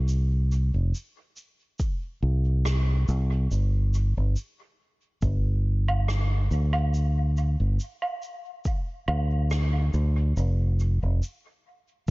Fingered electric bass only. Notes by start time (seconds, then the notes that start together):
Already playing: C2
0.74 F1
2.23 C2
3.08 C2
3.51 G1
4.17 G1
5.22 G1
6.51 D2
7.60 G1
9.08 D2
9.94 D2
10.37 F1
11.03 F1